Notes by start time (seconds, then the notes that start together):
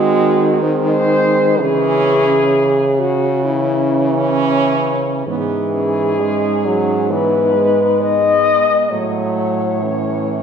Already playing: D#3 G#3 C4 F#4
0.63 G#3 C4 C5
1.60 C#3 E3 C#4 G#4
2.99 F#4
3.44 E3 C#4 E4
5.27 G#2 E3 B3 G#4
5.73 C#4
6.21 G#3
6.66 F#3
7.10 E3 B3 B4
7.55 G#3
7.99 B3 D#5
8.91 A2 F#3 A3 C#5
9.82 E3 C#4